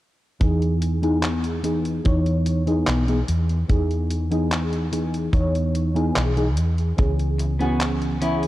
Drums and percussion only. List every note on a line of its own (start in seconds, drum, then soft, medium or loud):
0.41 kick loud
0.41 closed hi-hat medium
0.62 closed hi-hat soft
0.82 closed hi-hat medium
1.03 closed hi-hat soft
1.23 clap loud
1.23 closed hi-hat medium
1.44 closed hi-hat soft
1.64 closed hi-hat medium
1.85 closed hi-hat soft
2.05 kick loud
2.05 closed hi-hat medium
2.26 closed hi-hat soft
2.46 closed hi-hat medium
2.67 closed hi-hat soft
2.87 clap loud
2.87 closed hi-hat medium
3.08 closed hi-hat soft
3.28 closed hi-hat medium
3.49 closed hi-hat soft
3.70 kick loud
3.70 closed hi-hat medium
3.91 closed hi-hat soft
4.11 closed hi-hat medium
4.32 closed hi-hat soft
4.52 clap loud
4.52 closed hi-hat medium
4.73 closed hi-hat soft
4.93 closed hi-hat medium
5.14 closed hi-hat soft
5.33 kick loud
5.33 closed hi-hat medium
5.55 closed hi-hat soft
5.75 closed hi-hat medium
5.96 closed hi-hat soft
6.16 clap loud
6.16 closed hi-hat medium
6.37 closed hi-hat soft
6.57 closed hi-hat medium
6.78 closed hi-hat soft
6.98 kick loud
6.98 closed hi-hat medium
7.19 closed hi-hat soft
7.39 closed hi-hat medium
7.61 closed hi-hat soft
7.80 clap loud
7.80 closed hi-hat medium
8.02 closed hi-hat soft
8.22 closed hi-hat medium
8.43 closed hi-hat soft